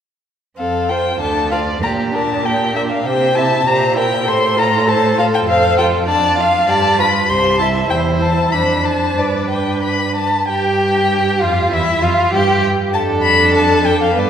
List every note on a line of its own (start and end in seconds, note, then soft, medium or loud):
0.57 1.18 F2 soft
0.57 0.91 C4 soft
0.57 0.92 A4 soft
0.57 0.91 F5 medium
0.89 1.20 F4 soft
0.89 1.21 C5 soft
0.89 1.19 G5 medium
1.20 1.84 D2 soft
1.20 1.53 D4 soft
1.20 1.54 A4 soft
1.20 1.51 A5 medium
1.51 1.82 F4 soft
1.51 1.83 D5 soft
1.51 1.59 F5 medium
1.82 3.05 A#2 soft
1.82 2.13 A#3 soft
1.82 2.16 G4 soft
1.82 1.91 A#5 medium
2.12 2.44 D4 soft
2.12 2.47 A#4 soft
2.12 2.46 A5 medium
2.43 2.75 A#3 soft
2.43 2.78 G4 soft
2.43 2.75 G5 medium
2.74 3.05 D4 soft
2.74 3.05 A#4 soft
2.74 2.82 E5 medium
2.91 3.07 F5 medium
3.05 3.65 C3 soft
3.05 3.37 G4 soft
3.05 3.39 C5 soft
3.05 3.37 G5 medium
3.35 3.64 E4 soft
3.35 3.66 E5 soft
3.35 3.68 A5 medium
3.65 4.29 A#2 medium
3.65 3.96 G4 soft
3.65 3.98 C5 soft
3.65 3.97 A#5 medium
3.94 4.25 E4 soft
3.94 4.27 A#4 soft
3.98 4.29 G5 medium
4.26 5.47 A2 medium
4.26 4.58 A4 soft
4.26 4.58 C5 medium
4.26 4.60 C6 medium
4.56 4.89 F4 soft
4.56 4.89 A4 soft
4.56 4.90 A#5 medium
4.87 5.20 A4 medium
4.87 5.19 C5 medium
4.87 5.19 A5 medium
5.18 5.48 F4 soft
5.18 5.48 A4 medium
5.18 5.25 F5 medium
5.34 5.40 G5 medium
5.48 6.66 F2 medium
5.48 5.80 A4 medium
5.48 5.80 C5 medium
5.48 5.77 F5 medium
5.78 6.07 F4 medium
5.78 6.07 A4 soft
5.78 5.86 G5 medium
6.08 6.40 D4 medium
6.08 6.42 D5 soft
6.08 6.37 A5 medium
6.38 6.68 F4 soft
6.38 6.71 F5 medium
6.38 6.68 F5 soft
6.69 7.31 G2 medium
6.69 7.01 G4 soft
6.69 7.00 D5 medium
6.69 7.01 A5 medium
6.99 7.29 F4 soft
6.99 7.30 B4 soft
6.99 7.31 B5 medium
7.29 7.90 C2 medium
7.29 7.61 G4 medium
7.29 7.64 C5 soft
7.29 7.58 C6 medium
7.59 7.89 E4 soft
7.59 7.90 E5 soft
7.59 7.67 A5 medium
7.90 8.50 E2 medium
7.90 8.56 E4 medium
7.90 8.50 C5 medium
7.90 7.98 G5 medium
8.20 8.53 A5 medium
8.52 9.18 F2 soft
8.52 9.18 D4 soft
8.52 9.21 C5 soft
8.52 8.87 B5 medium
8.85 9.20 A5 medium
9.18 10.25 G2 soft
9.18 10.25 D4 soft
9.18 10.28 B4 soft
9.18 9.50 D5 medium
9.51 9.81 G5 medium
9.83 10.15 B5 medium
10.16 10.47 A5 medium
10.48 11.44 G2 medium
10.48 11.42 G4 medium
10.48 11.45 G4 medium
10.48 11.43 G5 medium
11.41 11.71 F2 medium
11.41 11.71 F4 medium
11.41 11.75 F4 medium
11.41 11.72 F5 medium
11.72 11.80 E2 medium
11.72 12.03 E4 medium
11.72 12.04 E4 medium
11.72 12.06 E5 medium
12.01 12.10 F2 medium
12.01 12.32 F4 medium
12.01 12.36 F4 medium
12.01 12.33 F5 medium
12.31 12.62 G2 medium
12.31 12.62 G4 medium
12.31 12.64 G4 medium
12.31 12.63 G5 medium
12.93 14.18 F2 medium
12.93 14.13 D4 medium
12.93 14.13 A4 medium
12.93 13.02 A5 medium
13.23 13.53 B5 medium
13.55 13.87 A5 medium
13.86 14.01 G5 medium
14.03 14.20 F5 medium
14.16 14.30 G2 medium
14.16 14.30 B3 soft
14.16 14.30 B4 soft
14.16 14.30 D5 medium